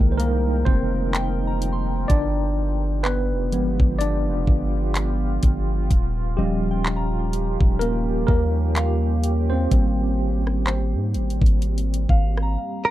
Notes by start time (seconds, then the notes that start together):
Already playing: D#3 F3 G3 G#3 A#3 D#4 G4 G#4 A#4 F5 G5
0.00 C2
0.12 C5
0.18 A#3 A#4, closed hi-hat
0.65 F1 C4 C5, kick
1.14 G5, clap, closed hi-hat
1.47 A#5
1.62 closed hi-hat
1.72 C6
2.08 G1 B3 D4 F4 G4 D5, kick, closed hi-hat
3.03 B3 B4, clap
3.33 F1
3.52 G1 F3 G#3 B3, closed hi-hat
3.80 G1, kick
3.99 D4 D5, closed hi-hat
4.28 F1
4.47 G1, kick
4.95 clap, closed hi-hat
5.43 G1, kick, closed hi-hat
5.91 D#1 D#3 C#4 G4, kick, closed hi-hat
6.37 D#1 F3 G3 C#4 G4 D#5
6.71 G5
6.86 clap
6.96 A#5
7.33 closed hi-hat
7.61 D#1, kick
7.79 A#3 A#4, closed hi-hat
8.27 D#2 A#3 A#4, kick
8.76 F5, clap, closed hi-hat
9.24 closed hi-hat
9.50 C4 C5
9.71 G#1 G3 A#3 C4, kick, closed hi-hat
10.47 cross-stick
10.67 C5, clap
10.94 G#2
11.14 G#1, closed hi-hat
11.30 closed hi-hat
11.42 G#1, kick
11.46 closed hi-hat
11.62 closed hi-hat
11.78 closed hi-hat
11.94 closed hi-hat
12.09 G#1 F5, kick
12.37 cross-stick
12.43 A#5
12.85 A#4